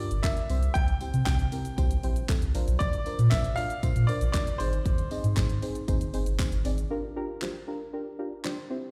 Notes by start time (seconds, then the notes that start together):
Already playing: D5
0.00 D4 F4 G4 A#4
0.11 G1, closed hi-hat, shaker
0.23 D4 F4 G4 A#4 E5, kick, snare, clap, closed hi-hat, tambourine, shaker
0.37 closed hi-hat, shaker
0.50 C2 C4 E4 G4 C5, open hi-hat, tambourine, shaker
0.63 closed hi-hat, shaker
0.74 C2 G5, kick, closed hi-hat, shaker
0.88 closed hi-hat, shaker
1.01 C4 E4 G4 C5, open hi-hat, tambourine, shaker
1.14 C3, closed hi-hat, shaker
1.25 C2 C4 E4 G4 C5 G5, kick, snare, clap, closed hi-hat, tambourine, shaker
1.39 closed hi-hat, shaker
1.52 C4 E4 G4 A#4, open hi-hat, tambourine, shaker
1.65 closed hi-hat, shaker
1.78 C2 C4 E4 G4 C5, kick, closed hi-hat, tambourine, shaker
1.91 closed hi-hat, shaker
2.03 A#1 C4 E4 G4 C5, open hi-hat, shaker
2.16 closed hi-hat, shaker
2.29 C4 E4 G4 A4, kick, snare, clap, closed hi-hat, tambourine, shaker
2.42 C2, closed hi-hat, shaker
2.55 A#1 D4 F4 A#4 C5, open hi-hat, tambourine, shaker
2.68 B1, closed hi-hat, shaker
2.79 A#1 D5, kick, closed hi-hat, tambourine, shaker
2.93 closed hi-hat, shaker
3.06 D4 F4 A#4 C5, open hi-hat, tambourine, shaker
3.19 A#2, closed hi-hat, shaker
3.30 A#1 D4 F4 A#4 C5 E5, kick, snare, clap, closed hi-hat, tambourine, shaker
3.44 closed hi-hat, shaker
3.56 D4 F4 A#4 D5 F5, open hi-hat, tambourine, shaker
3.70 closed hi-hat, shaker
3.83 A#2 D4 F4 A#4 C5, kick, closed hi-hat, tambourine, shaker
3.96 A#2, closed hi-hat, shaker
4.07 D4 F4 A#4 C5 D5, open hi-hat, tambourine, shaker
4.21 A#1, closed hi-hat, shaker
4.32 D4 F4 A#4 D5, kick, snare, clap, closed hi-hat, tambourine, shaker
4.47 closed hi-hat, shaker
4.58 G#1 C4 D#4 G#4 C5, open hi-hat, tambourine, shaker
4.73 closed hi-hat, shaker
4.86 G#1, kick, closed hi-hat, shaker
4.98 closed hi-hat, shaker
5.11 C4 D#4 G#4 D#5, open hi-hat, tambourine, shaker
5.24 G#2, closed hi-hat, shaker
5.37 G#1 C4 D#4 G#4 C5, kick, snare, clap, closed hi-hat, tambourine, shaker
5.50 closed hi-hat, shaker
5.62 C4 D#4 G#4 C5, open hi-hat, tambourine, shaker
5.75 closed hi-hat, shaker
5.88 G#1 C4 D#4 G#4 C5, kick, closed hi-hat, tambourine, shaker
6.01 closed hi-hat, shaker
6.13 G1 C4 D#4 G#4 C5, open hi-hat, tambourine, shaker
6.26 closed hi-hat, shaker
6.39 C4 D#4 G#4 C5, kick, snare, clap, closed hi-hat, tambourine, shaker
6.52 G#1, closed hi-hat, shaker
6.65 G#1 C4 D#4 G#4 D5, open hi-hat, tambourine, shaker
6.78 closed hi-hat, shaker
6.90 D4 F4 G4 A#4
7.16 D4 F4 G4 A#4
7.42 D4 F4 G4 C5, snare, clap
7.67 D4 F4 G4 A#4
7.93 D4 F4 G4 A#4
8.19 D4 F4 G4 A#4
8.44 D4 F4 G4 C5, snare, clap
8.70 C4 E4 G4 C5